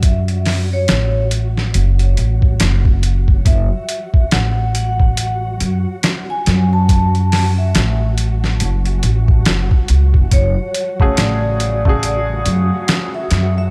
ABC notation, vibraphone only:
X:1
M:4/4
L:1/16
Q:"Swing 16ths" 1/4=70
K:F#m
V:1 name="Vibraphone"
e3 c3 z8 z2 | e4 f2 f2 f2 z3 g2 a- | a3 e3 z8 z2 | c4 d2 d2 d2 z3 e2 e |]